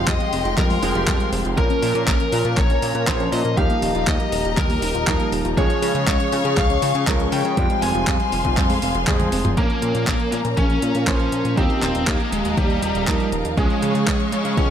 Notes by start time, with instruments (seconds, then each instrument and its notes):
Already playing: grand piano F3 G#3 C4 G4, string section G#3 F5 G5 C6
0.07 analog synth bass F2, synth arpeggio sound G3, lead electric guitar D#5, kick, clap, closed hi-hat
0.20 synth arpeggio sound G#3, closed hi-hat
0.33 analog synth bass F1, synth arpeggio sound C4, open hi-hat
0.45 analog synth bass F1, synth arpeggio sound F4, closed hi-hat
0.57 analog synth bass F2, synth arpeggio sound G3, lead electric guitar A#4, kick, clap, closed hi-hat
0.70 synth arpeggio sound G#3, open hi-hat
0.83 analog synth bass F1, grand piano F3 G#3 C4 G#4, synth arpeggio sound C4, open hi-hat
0.95 analog synth bass F1, grand piano F3 G#3 C4 G4, synth arpeggio sound F4, closed hi-hat
1.07 analog synth bass F2, synth arpeggio sound G3, kick, clap, closed hi-hat
1.20 synth arpeggio sound G#3, closed hi-hat
1.32 analog synth bass F1, synth arpeggio sound C4, open hi-hat
1.45 analog synth bass F1, synth arpeggio sound F4, closed hi-hat
1.57 analog synth bass A#1, grand piano F3 A#3 C#4 A#4, synth arpeggio sound A#3, string section C#4 A#4 A#5, lead electric guitar A#4, kick, closed hi-hat
1.70 synth arpeggio sound C#4, closed hi-hat
1.82 analog synth bass A#2, synth arpeggio sound F4, open hi-hat
1.95 analog synth bass A#2, synth arpeggio sound A#4, closed hi-hat
2.07 analog synth bass A#1, synth arpeggio sound A#3, lead electric guitar A#4, kick, clap, closed hi-hat
2.20 synth arpeggio sound C#4, closed hi-hat
2.32 analog synth bass A#2, synth arpeggio sound F4, open hi-hat
2.45 analog synth bass A#2, synth arpeggio sound A#4, closed hi-hat
2.57 analog synth bass A#1, synth arpeggio sound A#3, lead electric guitar C#5, kick, clap, closed hi-hat
2.70 synth arpeggio sound C#4, closed hi-hat
2.82 analog synth bass A#2, synth arpeggio sound F4, open hi-hat
2.95 analog synth bass A#2, synth arpeggio sound A#4, closed hi-hat
3.07 analog synth bass A#1, grand piano F3 A#3 C#4 C5, synth arpeggio sound A#3, kick, clap, closed hi-hat
3.20 synth arpeggio sound C#4, closed hi-hat
3.32 analog synth bass A#2, synth arpeggio sound F4, lead electric guitar D#5, open hi-hat
3.45 analog synth bass A#2, synth arpeggio sound A#4, closed hi-hat
3.57 analog synth bass D#2, grand piano F3 A#3 D#4 G4, synth arpeggio sound G3, string section G4 D#5 A#5, lead electric guitar F5, kick, closed hi-hat
3.70 synth arpeggio sound A#3, closed hi-hat
3.82 analog synth bass D#1, synth arpeggio sound D#4, open hi-hat
3.95 analog synth bass D#1, synth arpeggio sound F4, closed hi-hat
4.07 analog synth bass D#2, synth arpeggio sound G3, lead electric guitar D#5, kick, clap, closed hi-hat
4.20 synth arpeggio sound A#3, closed hi-hat
4.32 analog synth bass D#1, synth arpeggio sound D#4, open hi-hat
4.45 analog synth bass D#1, synth arpeggio sound F4, closed hi-hat
4.57 analog synth bass D#2, synth arpeggio sound G3, lead electric guitar A#4, kick, clap, closed hi-hat
4.70 synth arpeggio sound A#3, open hi-hat
4.82 analog synth bass D#1, synth arpeggio sound D#4, open hi-hat
4.95 analog synth bass D#1, synth arpeggio sound F4, closed hi-hat
5.07 analog synth bass D#2, grand piano F3 A#3 D#4 A#4, synth arpeggio sound G3, kick, clap, closed hi-hat
5.20 synth arpeggio sound A#3, closed hi-hat
5.32 analog synth bass D#1, synth arpeggio sound D#4, open hi-hat
5.45 analog synth bass D#1, synth arpeggio sound F4, closed hi-hat
5.57 analog synth bass C#2, grand piano F3 G#3 C#4 G#4, synth arpeggio sound G#3, string section G#4 C#5 F5 C#6, lead electric guitar C#5, kick, closed hi-hat
5.70 synth arpeggio sound C#4, closed hi-hat
5.82 analog synth bass C#3, synth arpeggio sound F4, open hi-hat
5.95 analog synth bass C#3, synth arpeggio sound G#4, closed hi-hat
6.07 analog synth bass C#2, synth arpeggio sound G#3, lead electric guitar C#5, kick, clap, closed hi-hat
6.20 synth arpeggio sound C#4, closed hi-hat
6.32 analog synth bass C#3, synth arpeggio sound F4, open hi-hat
6.45 analog synth bass C#3, synth arpeggio sound G#4, closed hi-hat
6.57 analog synth bass C#2, synth arpeggio sound G#3, lead electric guitar F5, kick, clap, closed hi-hat
6.70 synth arpeggio sound C#4, closed hi-hat
6.82 analog synth bass C#3, synth arpeggio sound F4, open hi-hat
6.95 analog synth bass C#3, synth arpeggio sound G#4, closed hi-hat
7.07 analog synth bass C#2, grand piano F3 G#3 C#4 A#4, synth arpeggio sound G#3, kick, clap, closed hi-hat
7.20 synth arpeggio sound C#4, closed hi-hat
7.32 analog synth bass C#3, synth arpeggio sound F4, lead electric guitar G5, open hi-hat
7.45 analog synth bass C#3, synth arpeggio sound G#4, closed hi-hat
7.57 analog synth bass F2, grand piano F3 G3 G#3 C4, string section F3 F5 G#5 C6, synth arpeggio sound G3, kick, closed hi-hat
7.70 synth arpeggio sound G#3, closed hi-hat
7.82 analog synth bass F1, synth arpeggio sound C4, lead electric guitar G#5, open hi-hat
7.95 analog synth bass F1, synth arpeggio sound F4, closed hi-hat
8.07 analog synth bass F2, synth arpeggio sound G3, kick, clap, closed hi-hat
8.20 synth arpeggio sound G#3, closed hi-hat
8.32 analog synth bass F1, synth arpeggio sound C4, open hi-hat
8.45 analog synth bass F1, synth arpeggio sound F4, kick, closed hi-hat
8.57 analog synth bass F2, synth arpeggio sound G3, kick, clap, closed hi-hat
8.70 synth arpeggio sound G#3, open hi-hat
8.82 analog synth bass F1, synth arpeggio sound C4, open hi-hat
8.95 analog synth bass F1, synth arpeggio sound F4, closed hi-hat
9.07 analog synth bass F2, grand piano F3 G#3 C4 G#4, synth arpeggio sound G3, kick, clap, closed hi-hat, high tom
9.20 synth arpeggio sound G#3, closed hi-hat, high tom
9.32 analog synth bass F1, synth arpeggio sound C4, open hi-hat
9.45 analog synth bass F1, synth arpeggio sound F4, closed hi-hat, mid tom
9.57 analog synth bass A#1, grand piano F3 A#3 C#4 A#4, lead electric guitar A#3, string section C#4 A#4 F5 A#5, kick, closed hi-hat
9.70 closed hi-hat
9.82 analog synth bass A#2, closed hi-hat
9.95 analog synth bass A#2, closed hi-hat
10.07 analog synth bass A#1, kick, clap, closed hi-hat
10.20 closed hi-hat
10.32 analog synth bass A#2, lead electric guitar A#3, closed hi-hat
10.45 analog synth bass A#2, closed hi-hat
10.57 analog synth bass A#1, lead electric guitar C#4, kick, closed hi-hat
10.70 closed hi-hat
10.82 analog synth bass A#2, closed hi-hat
10.95 analog synth bass A#2, closed hi-hat
11.07 analog synth bass A#1, grand piano F3 A#3 C#4 C5, lead electric guitar C#4, kick, clap, closed hi-hat
11.20 closed hi-hat
11.32 analog synth bass A#2, closed hi-hat
11.45 analog synth bass A#2, closed hi-hat
11.57 analog synth bass D#2, grand piano F3 A#3 D#4 G4, lead electric guitar C4, string section G4 D#5 A#5, kick, closed hi-hat
11.70 closed hi-hat
11.82 analog synth bass D#1, lead electric guitar C4, clap, closed hi-hat
11.95 analog synth bass D#1, closed hi-hat
12.07 analog synth bass D#2, lead electric guitar A#3, kick, clap, closed hi-hat
12.20 closed hi-hat
12.32 analog synth bass D#1, lead electric guitar G#3, closed hi-hat
12.45 analog synth bass D#1, closed hi-hat
12.57 analog synth bass D#2, lead electric guitar G3, kick, closed hi-hat
12.70 closed hi-hat
12.82 analog synth bass D#1, lead electric guitar G3, closed hi-hat
12.95 analog synth bass D#1, closed hi-hat
13.07 analog synth bass D#2, grand piano F3 A#3 D#4 A#4, kick, clap, closed hi-hat
13.20 closed hi-hat
13.32 analog synth bass D#1, closed hi-hat
13.45 analog synth bass D#1, closed hi-hat
13.57 analog synth bass C#2, grand piano F3 G#3 C#4 G#4, lead electric guitar G#3, string section G#4 C#5 C#6, kick, closed hi-hat
13.70 closed hi-hat
13.82 analog synth bass C#3, closed hi-hat
13.95 analog synth bass C#3, closed hi-hat
14.07 analog synth bass C#2, kick, clap, closed hi-hat
14.20 closed hi-hat
14.32 analog synth bass C#3, lead electric guitar G#3, closed hi-hat
14.45 analog synth bass C#3, closed hi-hat
14.57 analog synth bass C#2, lead electric guitar C#4, kick, closed hi-hat